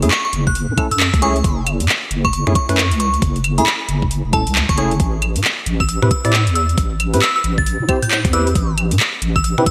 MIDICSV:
0, 0, Header, 1, 5, 480
1, 0, Start_track
1, 0, Key_signature, 3, "minor"
1, 0, Tempo, 444444
1, 1557, Time_signature, 4, 2, 24, 8
1, 10485, End_track
2, 0, Start_track
2, 0, Title_t, "Synth bell"
2, 0, Program_c, 0, 98
2, 119, Note_on_c, 0, 85, 88
2, 213, Note_off_c, 0, 85, 0
2, 268, Note_on_c, 0, 85, 73
2, 326, Note_off_c, 0, 85, 0
2, 507, Note_on_c, 0, 90, 94
2, 838, Note_off_c, 0, 90, 0
2, 988, Note_on_c, 0, 88, 94
2, 1045, Note_off_c, 0, 88, 0
2, 1318, Note_on_c, 0, 85, 91
2, 1707, Note_off_c, 0, 85, 0
2, 2426, Note_on_c, 0, 85, 92
2, 2485, Note_off_c, 0, 85, 0
2, 2519, Note_on_c, 0, 85, 80
2, 2613, Note_off_c, 0, 85, 0
2, 2759, Note_on_c, 0, 85, 93
2, 3220, Note_off_c, 0, 85, 0
2, 3238, Note_on_c, 0, 85, 94
2, 3419, Note_off_c, 0, 85, 0
2, 3866, Note_on_c, 0, 83, 92
2, 4011, Note_off_c, 0, 83, 0
2, 4678, Note_on_c, 0, 81, 94
2, 4859, Note_off_c, 0, 81, 0
2, 5067, Note_on_c, 0, 85, 91
2, 5125, Note_off_c, 0, 85, 0
2, 5159, Note_on_c, 0, 85, 77
2, 5253, Note_off_c, 0, 85, 0
2, 6266, Note_on_c, 0, 88, 91
2, 6325, Note_off_c, 0, 88, 0
2, 6358, Note_on_c, 0, 88, 78
2, 6453, Note_off_c, 0, 88, 0
2, 6597, Note_on_c, 0, 88, 92
2, 7059, Note_off_c, 0, 88, 0
2, 7077, Note_on_c, 0, 88, 91
2, 7259, Note_off_c, 0, 88, 0
2, 7796, Note_on_c, 0, 88, 88
2, 7892, Note_off_c, 0, 88, 0
2, 7946, Note_on_c, 0, 88, 73
2, 8004, Note_off_c, 0, 88, 0
2, 8187, Note_on_c, 0, 93, 94
2, 8518, Note_off_c, 0, 93, 0
2, 8667, Note_on_c, 0, 91, 93
2, 8725, Note_off_c, 0, 91, 0
2, 8757, Note_on_c, 0, 91, 73
2, 8853, Note_off_c, 0, 91, 0
2, 8997, Note_on_c, 0, 88, 94
2, 9386, Note_off_c, 0, 88, 0
2, 10106, Note_on_c, 0, 88, 88
2, 10164, Note_off_c, 0, 88, 0
2, 10198, Note_on_c, 0, 88, 80
2, 10293, Note_off_c, 0, 88, 0
2, 10436, Note_on_c, 0, 88, 93
2, 10485, Note_off_c, 0, 88, 0
2, 10485, End_track
3, 0, Start_track
3, 0, Title_t, "Tine electric piano"
3, 0, Program_c, 1, 4
3, 27, Note_on_c, 1, 57, 79
3, 27, Note_on_c, 1, 61, 73
3, 27, Note_on_c, 1, 64, 70
3, 27, Note_on_c, 1, 68, 86
3, 84, Note_off_c, 1, 61, 0
3, 85, Note_off_c, 1, 57, 0
3, 85, Note_off_c, 1, 64, 0
3, 85, Note_off_c, 1, 68, 0
3, 838, Note_on_c, 1, 61, 67
3, 838, Note_on_c, 1, 64, 71
3, 838, Note_on_c, 1, 69, 81
3, 839, Note_on_c, 1, 57, 77
3, 932, Note_off_c, 1, 57, 0
3, 932, Note_off_c, 1, 61, 0
3, 932, Note_off_c, 1, 64, 0
3, 932, Note_off_c, 1, 69, 0
3, 1318, Note_on_c, 1, 64, 84
3, 1318, Note_on_c, 1, 68, 104
3, 1319, Note_on_c, 1, 57, 92
3, 1319, Note_on_c, 1, 61, 85
3, 1468, Note_off_c, 1, 57, 0
3, 1468, Note_off_c, 1, 61, 0
3, 1468, Note_off_c, 1, 64, 0
3, 1468, Note_off_c, 1, 68, 0
3, 2667, Note_on_c, 1, 57, 80
3, 2667, Note_on_c, 1, 61, 78
3, 2667, Note_on_c, 1, 64, 77
3, 2667, Note_on_c, 1, 68, 90
3, 2724, Note_off_c, 1, 61, 0
3, 2725, Note_off_c, 1, 57, 0
3, 2725, Note_off_c, 1, 64, 0
3, 2725, Note_off_c, 1, 68, 0
3, 2906, Note_on_c, 1, 64, 79
3, 2907, Note_on_c, 1, 57, 86
3, 2907, Note_on_c, 1, 61, 77
3, 2907, Note_on_c, 1, 71, 94
3, 3000, Note_off_c, 1, 57, 0
3, 3000, Note_off_c, 1, 61, 0
3, 3000, Note_off_c, 1, 64, 0
3, 3000, Note_off_c, 1, 71, 0
3, 3867, Note_on_c, 1, 57, 74
3, 3867, Note_on_c, 1, 61, 69
3, 3867, Note_on_c, 1, 64, 72
3, 3867, Note_on_c, 1, 68, 88
3, 3924, Note_off_c, 1, 68, 0
3, 3925, Note_off_c, 1, 57, 0
3, 3925, Note_off_c, 1, 61, 0
3, 3925, Note_off_c, 1, 64, 0
3, 4678, Note_on_c, 1, 57, 74
3, 4678, Note_on_c, 1, 61, 69
3, 4678, Note_on_c, 1, 64, 71
3, 4678, Note_on_c, 1, 69, 84
3, 4772, Note_off_c, 1, 57, 0
3, 4772, Note_off_c, 1, 61, 0
3, 4772, Note_off_c, 1, 64, 0
3, 4772, Note_off_c, 1, 69, 0
3, 5158, Note_on_c, 1, 57, 90
3, 5158, Note_on_c, 1, 61, 85
3, 5158, Note_on_c, 1, 64, 86
3, 5158, Note_on_c, 1, 68, 105
3, 5308, Note_off_c, 1, 57, 0
3, 5308, Note_off_c, 1, 61, 0
3, 5308, Note_off_c, 1, 64, 0
3, 5308, Note_off_c, 1, 68, 0
3, 6506, Note_on_c, 1, 60, 81
3, 6506, Note_on_c, 1, 67, 74
3, 6507, Note_on_c, 1, 64, 75
3, 6507, Note_on_c, 1, 71, 90
3, 6564, Note_off_c, 1, 60, 0
3, 6564, Note_off_c, 1, 64, 0
3, 6564, Note_off_c, 1, 67, 0
3, 6564, Note_off_c, 1, 71, 0
3, 6746, Note_on_c, 1, 60, 87
3, 6746, Note_on_c, 1, 64, 77
3, 6746, Note_on_c, 1, 67, 80
3, 6746, Note_on_c, 1, 74, 99
3, 6839, Note_off_c, 1, 60, 0
3, 6839, Note_off_c, 1, 64, 0
3, 6839, Note_off_c, 1, 67, 0
3, 6840, Note_off_c, 1, 74, 0
3, 7707, Note_on_c, 1, 60, 77
3, 7707, Note_on_c, 1, 64, 73
3, 7707, Note_on_c, 1, 67, 73
3, 7707, Note_on_c, 1, 71, 88
3, 7764, Note_off_c, 1, 64, 0
3, 7764, Note_off_c, 1, 71, 0
3, 7765, Note_off_c, 1, 60, 0
3, 7765, Note_off_c, 1, 67, 0
3, 8519, Note_on_c, 1, 60, 77
3, 8519, Note_on_c, 1, 64, 70
3, 8519, Note_on_c, 1, 67, 68
3, 8519, Note_on_c, 1, 72, 86
3, 8612, Note_off_c, 1, 60, 0
3, 8612, Note_off_c, 1, 64, 0
3, 8613, Note_off_c, 1, 67, 0
3, 8613, Note_off_c, 1, 72, 0
3, 8998, Note_on_c, 1, 60, 94
3, 8998, Note_on_c, 1, 64, 85
3, 8998, Note_on_c, 1, 67, 88
3, 8998, Note_on_c, 1, 71, 105
3, 9148, Note_off_c, 1, 60, 0
3, 9148, Note_off_c, 1, 64, 0
3, 9148, Note_off_c, 1, 67, 0
3, 9148, Note_off_c, 1, 71, 0
3, 10347, Note_on_c, 1, 64, 75
3, 10347, Note_on_c, 1, 67, 75
3, 10347, Note_on_c, 1, 71, 87
3, 10348, Note_on_c, 1, 60, 82
3, 10404, Note_off_c, 1, 64, 0
3, 10405, Note_off_c, 1, 60, 0
3, 10405, Note_off_c, 1, 67, 0
3, 10405, Note_off_c, 1, 71, 0
3, 10485, End_track
4, 0, Start_track
4, 0, Title_t, "Wobble bass"
4, 0, Program_c, 2, 39
4, 28, Note_on_c, 2, 42, 85
4, 107, Note_off_c, 2, 42, 0
4, 358, Note_on_c, 2, 30, 94
4, 717, Note_off_c, 2, 30, 0
4, 747, Note_on_c, 2, 42, 88
4, 827, Note_off_c, 2, 42, 0
4, 986, Note_on_c, 2, 42, 89
4, 1227, Note_on_c, 2, 37, 96
4, 1243, Note_off_c, 2, 42, 0
4, 1540, Note_off_c, 2, 37, 0
4, 1558, Note_on_c, 2, 30, 104
4, 1946, Note_on_c, 2, 42, 88
4, 1963, Note_off_c, 2, 30, 0
4, 2026, Note_off_c, 2, 42, 0
4, 2278, Note_on_c, 2, 30, 97
4, 2637, Note_off_c, 2, 30, 0
4, 2667, Note_on_c, 2, 42, 92
4, 2747, Note_off_c, 2, 42, 0
4, 2906, Note_on_c, 2, 42, 91
4, 3146, Note_on_c, 2, 37, 98
4, 3163, Note_off_c, 2, 42, 0
4, 3460, Note_off_c, 2, 37, 0
4, 3477, Note_on_c, 2, 30, 101
4, 3867, Note_on_c, 2, 42, 85
4, 3883, Note_off_c, 2, 30, 0
4, 3947, Note_off_c, 2, 42, 0
4, 4198, Note_on_c, 2, 30, 90
4, 4557, Note_off_c, 2, 30, 0
4, 4587, Note_on_c, 2, 28, 103
4, 4826, Note_on_c, 2, 37, 103
4, 4842, Note_off_c, 2, 28, 0
4, 5030, Note_off_c, 2, 37, 0
4, 5066, Note_on_c, 2, 30, 84
4, 5379, Note_off_c, 2, 30, 0
4, 5397, Note_on_c, 2, 33, 105
4, 5786, Note_on_c, 2, 45, 87
4, 5802, Note_off_c, 2, 33, 0
4, 5866, Note_off_c, 2, 45, 0
4, 6117, Note_on_c, 2, 33, 94
4, 6477, Note_off_c, 2, 33, 0
4, 6505, Note_on_c, 2, 45, 92
4, 6586, Note_off_c, 2, 45, 0
4, 6745, Note_on_c, 2, 45, 89
4, 6986, Note_on_c, 2, 40, 94
4, 7002, Note_off_c, 2, 45, 0
4, 7299, Note_off_c, 2, 40, 0
4, 7317, Note_on_c, 2, 33, 100
4, 7706, Note_on_c, 2, 45, 89
4, 7723, Note_off_c, 2, 33, 0
4, 7786, Note_off_c, 2, 45, 0
4, 8037, Note_on_c, 2, 33, 97
4, 8397, Note_off_c, 2, 33, 0
4, 8427, Note_on_c, 2, 45, 88
4, 8506, Note_off_c, 2, 45, 0
4, 8667, Note_on_c, 2, 45, 91
4, 8906, Note_on_c, 2, 40, 98
4, 8923, Note_off_c, 2, 45, 0
4, 9220, Note_off_c, 2, 40, 0
4, 9238, Note_on_c, 2, 33, 103
4, 9626, Note_on_c, 2, 45, 87
4, 9643, Note_off_c, 2, 33, 0
4, 9706, Note_off_c, 2, 45, 0
4, 9957, Note_on_c, 2, 33, 96
4, 10317, Note_off_c, 2, 33, 0
4, 10345, Note_on_c, 2, 45, 93
4, 10426, Note_off_c, 2, 45, 0
4, 10485, End_track
5, 0, Start_track
5, 0, Title_t, "Drums"
5, 26, Note_on_c, 9, 42, 66
5, 117, Note_on_c, 9, 39, 123
5, 134, Note_off_c, 9, 42, 0
5, 225, Note_off_c, 9, 39, 0
5, 357, Note_on_c, 9, 42, 94
5, 465, Note_off_c, 9, 42, 0
5, 507, Note_on_c, 9, 36, 67
5, 597, Note_on_c, 9, 42, 66
5, 615, Note_off_c, 9, 36, 0
5, 705, Note_off_c, 9, 42, 0
5, 838, Note_on_c, 9, 36, 117
5, 838, Note_on_c, 9, 42, 107
5, 838, Note_on_c, 9, 75, 79
5, 946, Note_off_c, 9, 36, 0
5, 946, Note_off_c, 9, 42, 0
5, 946, Note_off_c, 9, 75, 0
5, 987, Note_on_c, 9, 42, 65
5, 1078, Note_on_c, 9, 26, 32
5, 1078, Note_on_c, 9, 39, 127
5, 1095, Note_off_c, 9, 42, 0
5, 1186, Note_off_c, 9, 26, 0
5, 1186, Note_off_c, 9, 39, 0
5, 1227, Note_on_c, 9, 26, 60
5, 1227, Note_on_c, 9, 36, 108
5, 1227, Note_on_c, 9, 42, 51
5, 1318, Note_off_c, 9, 42, 0
5, 1318, Note_on_c, 9, 42, 99
5, 1335, Note_off_c, 9, 26, 0
5, 1335, Note_off_c, 9, 36, 0
5, 1426, Note_off_c, 9, 42, 0
5, 1467, Note_on_c, 9, 42, 36
5, 1558, Note_off_c, 9, 42, 0
5, 1558, Note_on_c, 9, 36, 127
5, 1558, Note_on_c, 9, 42, 65
5, 1666, Note_off_c, 9, 36, 0
5, 1666, Note_off_c, 9, 42, 0
5, 1798, Note_on_c, 9, 42, 108
5, 1798, Note_on_c, 9, 75, 84
5, 1906, Note_off_c, 9, 42, 0
5, 1906, Note_off_c, 9, 75, 0
5, 1947, Note_on_c, 9, 42, 64
5, 2039, Note_on_c, 9, 39, 127
5, 2055, Note_off_c, 9, 42, 0
5, 2147, Note_off_c, 9, 39, 0
5, 2278, Note_on_c, 9, 42, 91
5, 2386, Note_off_c, 9, 42, 0
5, 2427, Note_on_c, 9, 36, 64
5, 2427, Note_on_c, 9, 75, 62
5, 2518, Note_on_c, 9, 42, 64
5, 2535, Note_off_c, 9, 36, 0
5, 2535, Note_off_c, 9, 75, 0
5, 2626, Note_off_c, 9, 42, 0
5, 2667, Note_on_c, 9, 26, 72
5, 2758, Note_on_c, 9, 36, 112
5, 2758, Note_on_c, 9, 42, 104
5, 2775, Note_off_c, 9, 26, 0
5, 2866, Note_off_c, 9, 36, 0
5, 2866, Note_off_c, 9, 42, 0
5, 2907, Note_on_c, 9, 26, 71
5, 2907, Note_on_c, 9, 42, 62
5, 2998, Note_on_c, 9, 39, 125
5, 3015, Note_off_c, 9, 26, 0
5, 3015, Note_off_c, 9, 42, 0
5, 3106, Note_off_c, 9, 39, 0
5, 3147, Note_on_c, 9, 42, 53
5, 3238, Note_off_c, 9, 42, 0
5, 3238, Note_on_c, 9, 42, 96
5, 3346, Note_off_c, 9, 42, 0
5, 3387, Note_on_c, 9, 42, 35
5, 3478, Note_off_c, 9, 42, 0
5, 3478, Note_on_c, 9, 26, 67
5, 3478, Note_on_c, 9, 36, 123
5, 3478, Note_on_c, 9, 42, 66
5, 3586, Note_off_c, 9, 26, 0
5, 3586, Note_off_c, 9, 36, 0
5, 3586, Note_off_c, 9, 42, 0
5, 3627, Note_on_c, 9, 42, 36
5, 3717, Note_off_c, 9, 42, 0
5, 3717, Note_on_c, 9, 42, 109
5, 3717, Note_on_c, 9, 75, 87
5, 3825, Note_off_c, 9, 42, 0
5, 3825, Note_off_c, 9, 75, 0
5, 3866, Note_on_c, 9, 42, 66
5, 3957, Note_on_c, 9, 39, 127
5, 3974, Note_off_c, 9, 42, 0
5, 4065, Note_off_c, 9, 39, 0
5, 4197, Note_on_c, 9, 42, 93
5, 4305, Note_off_c, 9, 42, 0
5, 4346, Note_on_c, 9, 36, 66
5, 4438, Note_on_c, 9, 42, 66
5, 4454, Note_off_c, 9, 36, 0
5, 4546, Note_off_c, 9, 42, 0
5, 4677, Note_on_c, 9, 36, 118
5, 4677, Note_on_c, 9, 42, 97
5, 4677, Note_on_c, 9, 75, 81
5, 4785, Note_off_c, 9, 36, 0
5, 4785, Note_off_c, 9, 42, 0
5, 4785, Note_off_c, 9, 75, 0
5, 4826, Note_on_c, 9, 42, 64
5, 4917, Note_on_c, 9, 26, 31
5, 4917, Note_on_c, 9, 39, 124
5, 4934, Note_off_c, 9, 42, 0
5, 5025, Note_off_c, 9, 26, 0
5, 5025, Note_off_c, 9, 39, 0
5, 5066, Note_on_c, 9, 26, 58
5, 5066, Note_on_c, 9, 36, 110
5, 5066, Note_on_c, 9, 42, 50
5, 5157, Note_off_c, 9, 42, 0
5, 5157, Note_on_c, 9, 42, 93
5, 5174, Note_off_c, 9, 26, 0
5, 5174, Note_off_c, 9, 36, 0
5, 5265, Note_off_c, 9, 42, 0
5, 5306, Note_on_c, 9, 42, 37
5, 5397, Note_off_c, 9, 42, 0
5, 5397, Note_on_c, 9, 36, 121
5, 5397, Note_on_c, 9, 42, 70
5, 5505, Note_off_c, 9, 36, 0
5, 5505, Note_off_c, 9, 42, 0
5, 5637, Note_on_c, 9, 42, 105
5, 5637, Note_on_c, 9, 75, 84
5, 5745, Note_off_c, 9, 42, 0
5, 5745, Note_off_c, 9, 75, 0
5, 5786, Note_on_c, 9, 42, 68
5, 5877, Note_on_c, 9, 39, 122
5, 5894, Note_off_c, 9, 42, 0
5, 5985, Note_off_c, 9, 39, 0
5, 6117, Note_on_c, 9, 42, 91
5, 6225, Note_off_c, 9, 42, 0
5, 6266, Note_on_c, 9, 36, 64
5, 6267, Note_on_c, 9, 75, 63
5, 6358, Note_on_c, 9, 42, 69
5, 6374, Note_off_c, 9, 36, 0
5, 6375, Note_off_c, 9, 75, 0
5, 6466, Note_off_c, 9, 42, 0
5, 6507, Note_on_c, 9, 26, 68
5, 6597, Note_on_c, 9, 36, 111
5, 6598, Note_on_c, 9, 42, 103
5, 6615, Note_off_c, 9, 26, 0
5, 6705, Note_off_c, 9, 36, 0
5, 6706, Note_off_c, 9, 42, 0
5, 6747, Note_on_c, 9, 26, 67
5, 6747, Note_on_c, 9, 42, 68
5, 6838, Note_on_c, 9, 39, 117
5, 6855, Note_off_c, 9, 26, 0
5, 6855, Note_off_c, 9, 42, 0
5, 6946, Note_off_c, 9, 39, 0
5, 6987, Note_on_c, 9, 42, 54
5, 7079, Note_off_c, 9, 42, 0
5, 7079, Note_on_c, 9, 42, 94
5, 7187, Note_off_c, 9, 42, 0
5, 7228, Note_on_c, 9, 42, 37
5, 7317, Note_on_c, 9, 36, 117
5, 7318, Note_off_c, 9, 42, 0
5, 7318, Note_on_c, 9, 26, 67
5, 7318, Note_on_c, 9, 42, 73
5, 7425, Note_off_c, 9, 36, 0
5, 7426, Note_off_c, 9, 26, 0
5, 7426, Note_off_c, 9, 42, 0
5, 7558, Note_on_c, 9, 42, 108
5, 7558, Note_on_c, 9, 75, 81
5, 7666, Note_off_c, 9, 42, 0
5, 7666, Note_off_c, 9, 75, 0
5, 7707, Note_on_c, 9, 42, 68
5, 7797, Note_on_c, 9, 39, 117
5, 7815, Note_off_c, 9, 42, 0
5, 7905, Note_off_c, 9, 39, 0
5, 8038, Note_on_c, 9, 42, 96
5, 8146, Note_off_c, 9, 42, 0
5, 8186, Note_on_c, 9, 36, 60
5, 8278, Note_on_c, 9, 42, 70
5, 8294, Note_off_c, 9, 36, 0
5, 8386, Note_off_c, 9, 42, 0
5, 8518, Note_on_c, 9, 36, 108
5, 8518, Note_on_c, 9, 42, 103
5, 8518, Note_on_c, 9, 75, 80
5, 8626, Note_off_c, 9, 36, 0
5, 8626, Note_off_c, 9, 42, 0
5, 8626, Note_off_c, 9, 75, 0
5, 8667, Note_on_c, 9, 42, 69
5, 8758, Note_on_c, 9, 26, 29
5, 8758, Note_on_c, 9, 39, 115
5, 8775, Note_off_c, 9, 42, 0
5, 8866, Note_off_c, 9, 26, 0
5, 8866, Note_off_c, 9, 39, 0
5, 8907, Note_on_c, 9, 26, 52
5, 8907, Note_on_c, 9, 36, 107
5, 8907, Note_on_c, 9, 42, 56
5, 8998, Note_off_c, 9, 42, 0
5, 8998, Note_on_c, 9, 42, 95
5, 9015, Note_off_c, 9, 26, 0
5, 9015, Note_off_c, 9, 36, 0
5, 9106, Note_off_c, 9, 42, 0
5, 9147, Note_on_c, 9, 42, 39
5, 9238, Note_off_c, 9, 42, 0
5, 9238, Note_on_c, 9, 36, 117
5, 9238, Note_on_c, 9, 42, 73
5, 9346, Note_off_c, 9, 36, 0
5, 9346, Note_off_c, 9, 42, 0
5, 9477, Note_on_c, 9, 42, 114
5, 9477, Note_on_c, 9, 75, 80
5, 9585, Note_off_c, 9, 42, 0
5, 9585, Note_off_c, 9, 75, 0
5, 9626, Note_on_c, 9, 42, 72
5, 9717, Note_on_c, 9, 39, 111
5, 9734, Note_off_c, 9, 42, 0
5, 9825, Note_off_c, 9, 39, 0
5, 9958, Note_on_c, 9, 42, 96
5, 10066, Note_off_c, 9, 42, 0
5, 10106, Note_on_c, 9, 36, 60
5, 10107, Note_on_c, 9, 75, 61
5, 10198, Note_on_c, 9, 42, 73
5, 10214, Note_off_c, 9, 36, 0
5, 10215, Note_off_c, 9, 75, 0
5, 10306, Note_off_c, 9, 42, 0
5, 10347, Note_on_c, 9, 26, 69
5, 10437, Note_on_c, 9, 36, 106
5, 10438, Note_on_c, 9, 42, 113
5, 10455, Note_off_c, 9, 26, 0
5, 10485, Note_off_c, 9, 36, 0
5, 10485, Note_off_c, 9, 42, 0
5, 10485, End_track
0, 0, End_of_file